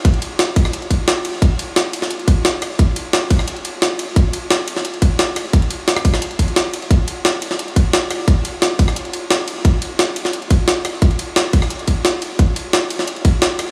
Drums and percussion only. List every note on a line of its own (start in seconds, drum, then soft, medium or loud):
0.05 kick loud
0.05 closed hi-hat medium
0.14 closed hi-hat soft
0.22 closed hi-hat medium
0.22 ride medium
0.39 snare loud
0.39 closed hi-hat medium
0.56 kick loud
0.56 closed hi-hat medium
0.56 ride medium
0.65 cross-stick soft
0.73 closed hi-hat medium
0.82 closed hi-hat soft
0.91 kick medium
0.91 closed hi-hat medium
0.91 ride medium
1.08 snare loud
1.08 closed hi-hat medium
1.25 closed hi-hat medium
1.25 ride medium
1.42 kick loud
1.42 closed hi-hat medium
1.59 closed hi-hat medium
1.59 ride medium
1.76 snare loud
1.76 closed hi-hat medium
1.93 closed hi-hat medium
1.93 ride medium
2.02 snare soft
2.11 closed hi-hat medium
2.19 closed hi-hat soft
2.28 kick loud
2.28 closed hi-hat medium
2.28 ride medium
2.45 snare loud
2.45 closed hi-hat loud
2.62 cross-stick soft
2.62 closed hi-hat medium
2.62 ride medium
2.79 kick loud
2.79 closed hi-hat loud
2.96 closed hi-hat medium
2.96 ride medium
3.13 snare loud
3.13 closed hi-hat medium
3.30 kick loud
3.30 closed hi-hat medium
3.30 ride medium
3.39 cross-stick soft
3.48 closed hi-hat medium
3.56 closed hi-hat soft
3.65 closed hi-hat medium
3.65 ride medium
3.82 snare loud
3.82 closed hi-hat medium
3.99 closed hi-hat medium
3.99 ride medium
4.16 kick loud
4.16 closed hi-hat medium
4.33 closed hi-hat medium
4.33 ride medium
4.50 snare loud
4.50 closed hi-hat loud
4.68 closed hi-hat medium
4.68 ride medium
4.77 snare soft
4.85 closed hi-hat medium
4.94 closed hi-hat soft
5.02 kick loud
5.02 closed hi-hat medium
5.02 ride medium
5.19 snare loud
5.19 closed hi-hat loud
5.36 cross-stick soft
5.36 closed hi-hat medium
5.36 ride medium
5.53 kick loud
5.53 closed hi-hat loud
5.62 closed hi-hat soft
5.71 closed hi-hat medium
5.71 ride medium
5.88 snare loud
5.88 closed hi-hat loud
5.97 cross-stick medium
6.05 kick loud
6.05 closed hi-hat medium
6.05 ride medium
6.14 cross-stick soft
6.14 snare soft
6.22 closed hi-hat loud
6.31 closed hi-hat soft
6.39 kick medium
6.39 closed hi-hat medium
6.39 ride medium
6.48 closed hi-hat soft
6.56 snare loud
6.56 closed hi-hat loud
6.74 closed hi-hat medium
6.74 ride medium
6.82 closed hi-hat soft
6.91 kick loud
6.91 closed hi-hat loud
7.08 closed hi-hat medium
7.08 ride medium
7.25 snare loud
7.25 closed hi-hat loud
7.42 closed hi-hat medium
7.42 ride medium
7.51 snare soft
7.59 closed hi-hat loud
7.68 closed hi-hat soft
7.76 kick loud
7.76 closed hi-hat medium
7.76 ride medium
7.93 snare loud
7.93 closed hi-hat loud
8.11 cross-stick soft
8.11 closed hi-hat medium
8.11 ride medium
8.28 kick loud
8.28 closed hi-hat medium
8.45 closed hi-hat medium
8.45 ride medium
8.62 snare loud
8.62 closed hi-hat loud
8.79 kick loud
8.79 closed hi-hat medium
8.79 ride medium
8.88 cross-stick soft
8.96 closed hi-hat loud
9.05 closed hi-hat soft
9.13 closed hi-hat medium
9.13 ride medium
9.30 snare loud
9.30 closed hi-hat loud
9.48 closed hi-hat medium
9.48 ride medium
9.65 kick loud
9.65 closed hi-hat medium
9.82 closed hi-hat medium
9.82 ride medium
9.99 snare loud
9.99 closed hi-hat medium
10.16 closed hi-hat medium
10.16 ride medium
10.25 snare soft
10.33 closed hi-hat medium
10.42 closed hi-hat soft
10.50 kick loud
10.50 closed hi-hat medium
10.50 ride medium
10.68 snare loud
10.68 closed hi-hat medium
10.85 cross-stick soft
10.85 closed hi-hat medium
10.85 ride medium
11.02 kick loud
11.02 closed hi-hat medium
11.11 closed hi-hat soft
11.19 closed hi-hat medium
11.19 ride medium
11.36 snare loud
11.36 closed hi-hat medium
11.53 kick loud
11.53 closed hi-hat medium
11.53 ride medium
11.62 cross-stick soft
11.70 closed hi-hat medium
11.79 closed hi-hat soft
11.88 kick medium
11.88 closed hi-hat medium
11.88 ride medium
12.05 snare loud
12.05 closed hi-hat medium
12.22 closed hi-hat medium
12.22 ride medium
12.39 kick loud
12.39 closed hi-hat medium
12.56 closed hi-hat medium
12.56 ride medium
12.73 snare loud
12.73 closed hi-hat medium
12.90 closed hi-hat medium
12.90 ride medium
12.99 snare soft
13.08 closed hi-hat medium
13.16 closed hi-hat soft
13.25 kick loud
13.25 closed hi-hat medium
13.25 ride medium
13.42 snare loud
13.42 closed hi-hat medium
13.59 cross-stick soft
13.59 closed hi-hat medium
13.59 ride medium